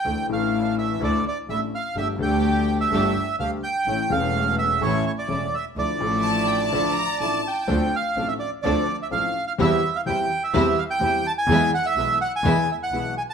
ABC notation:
X:1
M:4/4
L:1/16
Q:1/4=126
K:Dm
V:1 name="Violin section"
z16 | z16 | z16 | z4 a2 g a3 b2 a4 |
z16 | z16 | z16 |]
V:2 name="Bandoneon"
g2 f4 e2 d2 d2 e2 f2 | e2 g4- g e4- e f2 g2- | g2 f4 e2 ^c2 c d3 e2 | d12- d2 g2- |
g2 f3 e d2 d3 e f3 f | e3 f g3 e3 f g3 a ^g- | ^g2 ^f e3 f g3 e f3 g a |]
V:3 name="String section"
[A,DE]2 [E,A,D]6 [A,DE]2 z2 [A,DE]2 z2 | [A,DG]2 [A,DG]6 [A,DG]2 z2 [A,DG]2 z2 | [A,^CE]2 [E,A,C]6 [A,CE]2 z2 [A,CE]2 z2 | [F,DE]2 [F,DE]6 [F,DE]2 z2 [F,DE]2 z2 |
[F,CD]2 z2 [F,CD]2 z2 [F,CD]2 z2 [F,CD]2 z2 | [G,CE]2 z2 [G,CE]2 z2 [G,CE]2 z2 [G,CE]2 z2 | [^G,=B,E]2 z2 [G,B,E]2 z2 [G,B,E]2 z2 [G,B,E]2 z2 |]
V:4 name="Grand piano" clef=bass
[D,,D,E,A,DA]2 [A,,,A,,E,A,DA]6 [D,,D,E,A,DA]2 z2 [A,,,A,,E,A,DA]2 z2 | [G,,,G,,G,A,DA]2 [D,,D,G,A,DA]6 [G,,,G,,G,A,DA]2 z2 [D,,D,G,A,DA]2 z2 | [A,,,A,,E,A,^CA]2 [E,,,E,,E,A,CA]6 [A,,,A,,E,A,CA]2 z2 [E,,,E,,E,A,CA]2 z2 | [D,,D,F,DEA]2 [A,,,A,,F,DEA]6 [D,,D,F,DEA]2 z2 [A,,,A,,F,DEA]2 z2 |
[D,,D,F,CDA]2 z2 [A,,,A,,F,CDA]2 z2 [D,,D,F,CDA]2 z2 [A,,,A,,F,CDA]2 z2 | [E,,E,G,CG]2 z2 [E,,E,G,CG]2 z2 [E,,E,G,CG]2 z2 [E,,E,G,CG]2 z2 | [E,,E,^G,=B,^G]2 z2 [=B,,,=B,,E,G,B,G]2 z2 [E,,E,G,B,G]2 z2 [B,,,B,,E,G,B,G]2 z2 |]
V:5 name="Double bass" clef=bass
D,,2 A,,,6 D,,2 z2 A,,,2 z2 | G,,,2 D,,6 G,,,2 z2 D,,2 z2 | A,,,2 E,,,6 A,,,2 z2 E,,,2 z2 | D,,2 A,,,6 z8 |
D,,2 z2 A,,,2 z2 D,,2 z2 A,,,2 z2 | E,,2 z2 E,,2 z2 E,,2 z2 E,,2 z2 | E,,2 z2 =B,,,2 z2 E,,2 z2 B,,,2 z2 |]